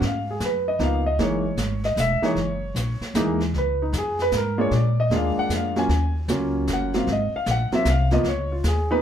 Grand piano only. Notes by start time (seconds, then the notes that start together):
0.05 F5
0.31 G#4
0.45 B4
0.68 D#5
0.80 F3 A#3 B3 D#4 F5
1.06 D#5
1.19 E3 G#3 A#3 D#4 C#5
1.85 D#5
2.00 E5
2.22 E3 G#3 A#3 D#4 C#5
3.15 E3 G#3 A#3 D#4
3.58 B4
3.82 D#4
3.98 G#4
4.22 B4
4.37 A#4
4.58 G#3 A#3 D4 F4 C#5
4.76 D5
5.00 D#5
5.11 G#3 A#3 D4 F4
5.16 F5
5.39 F#5
5.56 F5
5.76 F#3 A#3 C#4 F4 G#5
6.30 F#3 A#3 C#4 F4
6.73 F#5
6.94 F#3 A#3 C4 F4 F5
7.12 D#5
7.36 F5
7.51 F#5
7.72 F#3 A#3 C4 F4 E5
7.90 F5
8.12 F3 A#3 B3 F4 D#5
8.28 C#5
8.52 F4
8.68 G#4
8.91 F3 A#3 B3 D#4 B4